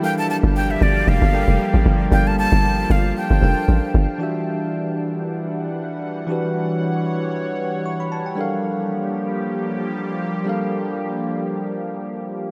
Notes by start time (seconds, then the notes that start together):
0.02 F3 G3 A#3 D4 G4 A4 A#4 F5 G5
0.18 A5
0.30 A5
0.43 G1
0.56 G5
0.71 E5
0.81 G1 D5
1.07 F1 F5
1.22 G1
1.32 G3 D4 A4 A#4 G5
1.48 F1
1.74 A1
1.86 G1
2.11 G1 G3 D4 F4 A4 A#4 F5 G5
2.27 A5
2.39 A5
2.52 G1
2.90 G1 F5
3.17 G5
3.31 G1
3.41 F1 G3 D4 A4 A#4 G5
3.68 A1
3.94 G1
4.18 E3 G3 D4 F#4 G4 F#5
4.23 E5
6.27 E3 D4 F#4 G4 C#5
6.32 B4
7.86 C#6
8.00 B5
8.12 A5
8.26 G5
8.35 F3 G3 A#3 D4 G4 A4 A#4
8.41 F5
10.44 G3 D4 A4 A#4
10.49 F5